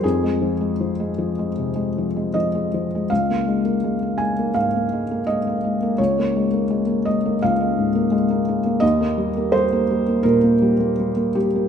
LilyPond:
<<
  \new Staff \with { instrumentName = "Felt piano" } { \time 4/4 \key des \lydian \tempo 4 = 83 aes'2. ees''4 | f''4. aes''8 f''4 ees''4 | des''4. ees''8 f''4 r4 | ees''4 c''4 bes'4. g'8 | }
  \new Staff \with { instrumentName = "Felt piano" } { \clef bass \time 4/4 \key des \lydian f,16 aes16 f16 aes16 f16 aes16 f16 aes16 c16 aes16 f16 aes16 f16 aes16 f16 aes16 | des,16 bes16 aes16 bes16 aes16 bes16 aes16 bes16 aes,16 bes16 aes16 bes16 aes16 bes16 aes16 bes16 | des,16 bes16 aes16 bes16 aes16 bes16 aes16 bes16 des,16 aes16 aes,16 bes16 aes16 bes16 aes16 bes16 | ees,16 bes16 g16 bes16 g16 bes16 g16 bes16 bes,16 bes16 g16 bes16 g16 bes16 g16 bes16 | }
>>